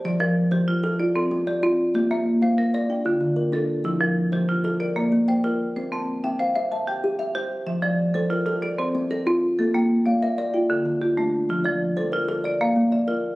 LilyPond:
<<
  \new Staff \with { instrumentName = "Kalimba" } { \time 12/8 \key f \major \tempo 4. = 126 << { r8 bes'4 c''4. f'8 a'4 d''4. | r8 e''4 f''4. d'8 f'4 bes'4. | r8 bes'4 c''4. bes'8 d''4 g''4. | r8 a''4 g''8 f''4 e''8 g''4 e''4. |
r8 d''4 c''8 bes'4 a'8 c''4 a'4. | r8 g''4 f''8 e''4 f'8 a'4 f'4. | r8 d''4 c''8 bes'4 d''8 f''4 d''4. | } \\ { f4 r8 f4 a'4 r8 c'4 f'4 | bes4 r8 bes4 d''8 r4 d4 d'4 | f4 r8 f4 a'8 r4 bes4 bes'4 | c'4 r8 c'4 e''4 r8 g'4 c''4 |
f4 r8 f4 a'4 r8 c'4 f'4 | bes4 r8 bes4 d''8 r4 d4 d'4 | f4 r8 f4 a'8 r4 bes4 bes'4 | } >> }
  \new Staff \with { instrumentName = "Marimba" } { \time 12/8 \key f \major << { d''4 r8 g'4 f'8 d''4. g'4. | g'4 r8 c''4 bes'8 g''4 r2 | e'4 r8 g'4 f'8 d''4 r8 c''4. | c''4 r8 e''4 c''8 a''4. f''4. |
e''4 r8 a'4 f'8 d''4. bes'4. | a'4 r8 d''4 bes'8 g''4 r8 g'4. | f'4 r8 a'4 f'8 d''4 r8 e''4. | } \\ { r8 f4 r8 f'4 r8 c'4 r8 c'4 | r8 bes4 r8 bes'4 r8 d4 r8 a'4 | r8 f4 r8 f'4 r8 bes4 r8 f'4 | r8 c'4 r8 c''4 r8 g'4 r8 g'4 |
r8 f4 r8 f'4 r8 c'4 r8 c'4 | r8 bes4 r8 bes'4 r8 d4 r8 a4 | r8 f4 r8 f'4 r8 bes4 r8 f'4 | } >> }
>>